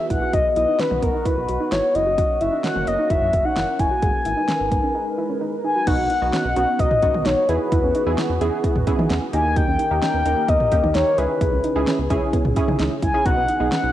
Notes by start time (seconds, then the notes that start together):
Already playing: E3 B3 F#4 G#4
0.10 A#1 E4 F#5, kick, closed hi-hat
0.22 F#4
0.33 B1 D#4 F#4 D#5, kick, closed hi-hat
0.56 B1 E4 D#5, closed hi-hat
0.68 D#4
0.79 C#4 B4, snare, closed hi-hat
0.91 B1, mid tom
1.02 B1 B3 A#4, kick, closed hi-hat
1.14 D#4
1.25 E4 B4, kick, closed hi-hat
1.37 B1
1.48 B1 F#4, closed hi-hat
1.60 D#4
1.71 G#1 E4 C#5, snare, closed hi-hat
1.95 F#1 A#3 C#4 E4 F#4 D#5, closed hi-hat
2.06 F#4
2.18 F#4, kick, closed hi-hat
2.41 F#1 E4 E5, closed hi-hat
2.53 D#4
2.64 C#4 F#5, snare, closed hi-hat
2.76 F#1, mid tom
2.87 F#1 B3 D#5, closed hi-hat
2.99 D#4
3.10 F#1 E4 E5, kick, closed hi-hat
3.22 F#2
3.33 F#1 F#4, kick, closed hi-hat
3.45 D#4 F#5
3.56 F#1 E4, snare, closed hi-hat
3.79 F#1 E4 G#5, kick, closed hi-hat
3.91 F#4
4.02 G#1 G#3 D#4 G#4 A#4 B4, kick, closed hi-hat
4.25 G#1 E4, closed hi-hat
4.37 D#4
4.49 C#4, snare, closed hi-hat
4.60 G#1
4.72 G#1 B3, kick, closed hi-hat
4.83 C#4
4.95 D#4
5.18 E4
5.29 C#4
5.41 D#4
5.64 D#4 G#5
5.76 F#4
5.87 B1 B3 D#4 F#4 F#5, kick, closed hi-hat, crash
5.99 B1 B3
6.10 D#4, closed hi-hat
6.22 B1 B3 D#4 F#4
6.33 C#4 F#5, snare, closed hi-hat
6.45 B1 B3
6.56 B1 B3 C#4 D#4 F#4, closed hi-hat
6.79 B1 B3 D#5, kick, closed hi-hat
6.91 mid tom
7.02 B1 B3 C#4 D#4 F#4, kick, closed hi-hat
7.14 B1, mid tom
7.25 B1 D#4 C#5, snare, closed hi-hat
7.49 E2 E3 B3 E4 G#4 B4, closed hi-hat
7.72 E2 E4, kick, closed hi-hat
7.83 E2 C#4
7.95 D#4, closed hi-hat
8.06 E2 B3 D#4 E4 G#4
8.18 C#4, snare, closed hi-hat
8.29 E2 B3
8.41 E2 B3 C#4 E4 G#4, closed hi-hat
8.64 B3, kick, closed hi-hat
8.76 E2, mid tom
8.87 B3 C#4 E4 G#4, kick, closed hi-hat
8.99 E3 D#4, mid tom
9.10 E2 C#4, snare, closed hi-hat
9.33 D#2 D#3 A#3 D#4 G4 A#4 G#5, closed hi-hat
9.56 D#4 G5, kick, closed hi-hat
9.68 D#2 C#4
9.79 D#4, closed hi-hat
9.91 D#2 A#3 D#4 G4
10.02 C#4 G5, snare, closed hi-hat
10.14 D#2 B3
10.26 D#2 A#3 C#4 D#4 A#4, closed hi-hat
10.49 D#2 B3 D#5, kick, closed hi-hat
10.60 mid tom
10.72 D#2 A#3 C#4 D#4 G4, kick, closed hi-hat
10.83 D#2 D#4, mid tom
10.95 D#2 D#4 C#5, snare, closed hi-hat
11.18 C#2 C#3 C#4 E4 G#4 B4, closed hi-hat
11.41 C#2 E4, kick, closed hi-hat
11.53 C#2 C#4
11.64 D#4, closed hi-hat
11.76 C#2 C#4 D#4 E4 G#4
11.87 C#4, snare, closed hi-hat
11.99 C#2 B3
12.10 C#2 C#4 E4 G#4, kick, closed hi-hat
12.33 B3, kick, closed hi-hat
12.45 C#2, mid tom
12.56 C#4 E4 G#4, kick, closed hi-hat
12.68 C#3 D#4, mid tom
12.79 C#2 D#4, snare, closed hi-hat
13.03 C#2 E4 G#5, kick, closed hi-hat
13.14 C#4 E4 G#4
13.26 B1 B3 D#4 F#4 F#5, kick, closed hi-hat
13.37 B1 B3
13.48 D#4, closed hi-hat
13.60 B1 B3 D#4 G#4
13.72 C#4 F#5, snare, closed hi-hat
13.83 B1 B3